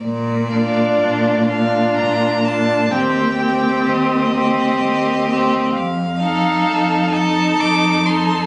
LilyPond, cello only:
\new Staff \with { instrumentName = "Cello" } { \clef bass \time 3/4 \key bes \major \tempo 4 = 63 bes,4 bes,4 bes,4 | ees,4 ees,4 ees,4 | f,4 f,4 f,4 | }